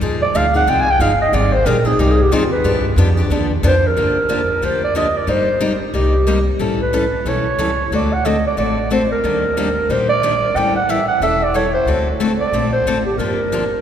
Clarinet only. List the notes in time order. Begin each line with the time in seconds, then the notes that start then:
0.22 D5
0.36 F5
0.56 F#5
0.70 G5
0.81 G#5
0.91 G5
1.01 F5
1.21 D#5
1.34 D5
1.53 C5
1.66 A#4
1.86 G#4
2.00 G4
2.11 G#4
2.22 G4
2.33 F4
2.52 B4
3.67 C5
3.87 A#4
4.65 C5
4.84 D5
4.96 D#5
5.17 D5
5.30 C5
5.95 G4
6.82 B4
7.29 C#5
7.95 D5
8.13 F#5
8.26 D#5
8.47 D5
8.59 D5
8.92 C5
9.12 A#4
9.91 C5
10.09 D5
10.56 G5
10.76 F#5
10.90 E5
11.08 F#5
11.23 E5
11.43 D5
11.56 C#5
11.74 C5
12.39 D5
12.73 C5
13.06 G4
13.18 A#4